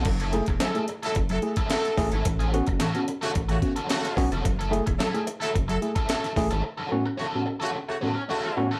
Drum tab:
CC |x---------------|----------------|----------------|----------------|
HH |-xxxxxxxxxxxxxox|xxxxxxxxxxxxxxox|xxxxxxxxxxxxxxox|----------------|
SD |----o-------ooo-|----o-------ooo-|----o-------ooo-|----------------|
BD |o--o----o--o--o-|o--o----o-o---o-|o--o----o--o--o-|----------------|